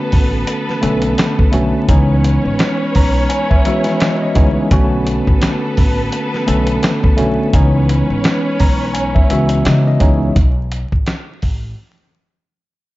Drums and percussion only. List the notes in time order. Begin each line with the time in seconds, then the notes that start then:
0.12 kick, open hi-hat
0.47 closed hi-hat
0.69 snare
0.83 closed hi-hat
1.02 closed hi-hat
1.18 snare, closed hi-hat
1.39 kick
1.53 closed hi-hat
1.89 kick, closed hi-hat
2.24 closed hi-hat
2.59 snare, closed hi-hat
2.95 kick, open hi-hat
3.30 closed hi-hat
3.51 kick
3.65 closed hi-hat
3.84 snare, closed hi-hat
4.00 snare, closed hi-hat
4.35 kick, closed hi-hat
4.71 kick, closed hi-hat
5.07 closed hi-hat
5.27 kick
5.42 snare, closed hi-hat
5.77 kick, open hi-hat
6.12 closed hi-hat
6.34 snare
6.48 closed hi-hat
6.67 closed hi-hat
6.83 snare, closed hi-hat
7.04 kick
7.18 closed hi-hat
7.53 kick, closed hi-hat
7.89 closed hi-hat
8.24 snare, closed hi-hat
8.60 kick, open hi-hat
8.95 closed hi-hat
9.16 kick
9.30 closed hi-hat
9.49 closed hi-hat
9.65 snare, closed hi-hat
10.00 kick, closed hi-hat
10.36 kick, closed hi-hat
10.72 closed hi-hat
10.92 kick
11.07 snare, closed hi-hat
11.42 kick, open hi-hat